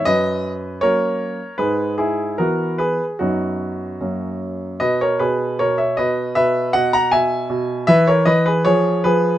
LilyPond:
<<
  \new Staff \with { instrumentName = "Grand piano" } { \time 2/4 \key b \major \tempo 4 = 77 <b' dis''>4 <ais' cis''>4 | <gis' b'>8 <e' gis'>8 <fis' ais'>8 <gis' b'>8 | <dis' fis'>4. r8 | <b' dis''>16 <ais' cis''>16 <gis' b'>8 <ais' cis''>16 <cis'' e''>16 <b' dis''>8 |
<b' e''>8 <dis'' fis''>16 <fis'' ais''>16 <e'' gis''>4 | <b' e''>16 <ais' cis''>16 <b' dis''>16 <gis' b'>16 <gis' cis''>8 <gis' b'>8 | }
  \new Staff \with { instrumentName = "Grand piano" } { \clef bass \time 2/4 \key b \major fis,4 <fis ais cis'>4 | gis,4 <e b e'>4 | <fis, fis b>4 <fis, fis ais cis'>4 | b,8 b,8 b,8 b,8 |
b,8 b,8 b,8 b,8 | e8 e8 eis8 eis8 | }
>>